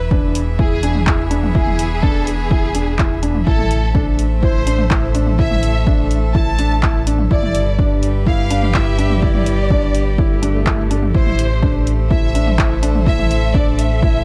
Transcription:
Already playing: E1 E3 B4 E5
0.10 D4 G#4, kick
0.18 B3
0.35 closed hi-hat
0.58 E4 G#4, kick
0.83 D4, closed hi-hat
0.95 mid tom
1.07 E4, kick, clap
1.31 D4, closed hi-hat
1.43 mid tom
1.55 E4 G#4, kick
1.67 mid tom
1.79 closed hi-hat
2.03 D4 A4, kick
2.27 G#4, closed hi-hat
2.50 E4, kick
2.75 D4, closed hi-hat
2.99 E4, kick, clap
3.23 D4, closed hi-hat
3.35 mid tom
3.46 A1 A3 E4 A4, kick
3.59 mid tom
3.71 closed hi-hat
3.85 A4 C5
3.94 D4, kick
4.19 closed hi-hat
4.42 E4 C5, kick
4.67 D4, closed hi-hat
4.78 mid tom
4.90 E4, kick, clap
5.15 D4, closed hi-hat
5.26 mid tom
5.38 E4 E5, kick
5.51 mid tom
5.63 closed hi-hat
5.87 D4, kick
6.11 closed hi-hat
6.34 E4 A5, kick
6.59 D4, closed hi-hat
6.83 E4, kick, clap
7.07 D4, closed hi-hat
7.19 mid tom
7.30 G1 G3 E4 D5, kick
7.43 mid tom
7.55 closed hi-hat
7.61 B4
7.79 D4 G4, kick
8.01 G5, closed hi-hat
8.27 E4 F5, kick
8.50 D4, closed hi-hat
8.62 mid tom
8.74 E4 E5, kick, clap
8.99 D4, closed hi-hat
9.10 mid tom
9.22 E4 D5, kick
9.34 mid tom
9.46 closed hi-hat
9.70 D4, kick
9.95 closed hi-hat
10.18 E4, kick, swell
10.42 D4, closed hi-hat
10.66 E4, kick, clap
10.91 D4, closed hi-hat
11.03 mid tom
11.14 A1 A3 E4 C5, kick
11.27 mid tom
11.39 closed hi-hat
11.62 D4 A4, kick
11.76 C5
11.87 closed hi-hat
12.10 E4 E5, kick
12.18 E5
12.35 D4, closed hi-hat
12.47 mid tom
12.59 E4, kick, clap
12.83 D4, closed hi-hat
12.95 mid tom
13.06 E4 E5, kick
13.19 mid tom
13.31 closed hi-hat
13.54 D4 D5, kick
13.79 E5, closed hi-hat
14.02 E4, kick

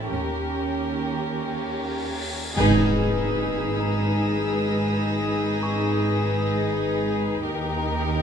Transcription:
Already playing: A1 A2 A4 B6
0.11 D#2 C#4 G4 A#4, cymbal swell
2.56 G#1 G#2 D#4 G#4 B4 D#6 E6, impact
3.80 A#5 A#6
5.63 C#6
7.45 D#2 D#4 G4 A#4 A#5
7.78 A#5
8.08 G5

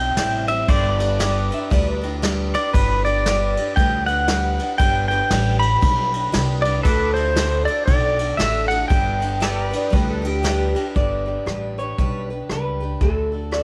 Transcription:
Already playing: E4 C5 G5
0.00 G3 C4
0.17 A1 C3 E3 G3 C4 E4 C5, snare, ride
0.48 G3 C4 E4 C5 E5, ride
0.68 G1 G3 D4 G4 B4 C5 D5, kick, ride
0.89 B4
0.99 D4 G4 B4, ride
1.19 G3 D4 G4 B4, snare, ride
1.51 D4 G4 B4 E5, ride
1.70 D2 G3 D4 G4 B4 D5, kick, ride
1.88 B4
2.02 D4 G4 B4, ride
2.22 G3 D4 G4 B4, snare, ride
2.54 D4 G4 B4 D5, ride
2.73 G1 G3 D4 G4 B4, kick, ride
3.05 D4 G4 B4 D5, ride
3.26 G3 D4 G4 B4, snare, ride
3.57 D4 G4 B4, ride
3.76 D2 G3 D4 G4 B4 G5, kick, ride
4.07 G4 B4 F#5, ride
4.11 D4
4.28 G3 D4 G4 B4, snare, ride
4.59 D4 G4 B4, ride
4.78 G1 G3 D4 G4 B4 G5, kick, ride
5.08 G4 B4 G5, ride
5.13 D4
5.30 A1 G3 D4 G4 B4, snare, ride
5.60 D4 G4 B4 B5, ride
5.82 B1 G3 D4 G4 B4, kick, ride
6.12 D4 G4 B4, ride
6.32 C2 G3 D4 G4 B4, snare, ride
6.62 G4 B4 D5, ride
6.67 D4
6.83 D2 D3 A3 D4 F#4 A4 B4 D5, kick, ride
7.14 F#4 A4 C5, ride
7.18 D4
7.36 D3 A3 D4 F#4 A4, snare, ride
7.65 D4 F#4 A4 D5, ride
7.86 B1 A3 D4 F#4 D5, kick, ride
7.91 A4
8.19 D4 F#4 A4, ride
8.37 A1 D3 A3 D4 F#4 A4 E5, snare, ride
8.68 F#4 A4 F#5, ride
8.72 D4
8.88 G1 G3 D4 G4 B4 G5, kick, ride
9.20 D4 G4 B4, ride
9.40 G3 D4 G4 A4 B4 D5, snare, ride
9.67 B4
9.73 D4 G4 D5, ride
9.90 D2 G3 D4 G4 B4, kick, ride
10.10 A4
10.22 D4 G4 B4, ride
10.27 G4
10.43 G3 D4 G4 B4, snare, ride
10.75 D4 G4 B4, ride
10.95 G1 G3 D4 G4 B4 D5, kick, closed hi-hat
11.26 D4 G4 B4
11.46 A1 G3 D4 G4 B4, cross-stick, closed hi-hat
11.78 D4 G4 B4 C#5, closed hi-hat
11.98 B1 G3 D4 G4 B4, kick, closed hi-hat
12.30 D4 G4 B4
12.49 C#2 G3 D4 G4 B4, cross-stick, closed hi-hat
12.80 D4 G4 B4
13.01 D2 D3 A3 D4 F#4 A4, kick, closed hi-hat
13.32 D4 F#4 A4
13.52 A3 D4 F#4 A4 D5, cross-stick, closed hi-hat

